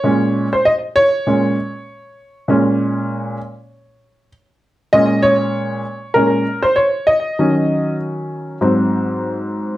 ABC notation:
X:1
M:4/4
L:1/16
Q:"Swing 16ths" 1/4=98
K:Bbm
V:1 name="Upright piano"
d3 c e2 d8- d2- | d12 z4 | e2 d6 B3 c d2 e2- | e4 z12 |]
V:2 name="Upright piano" clef=bass
[B,,A,D]2 z6 [B,,A,D]2 z6 | [B,,A,D]6 z8 z2 | [B,,A,D]6 z2 [B,,A,D]2 z6 | [E,G,D]8 [A,,G,C]8 |]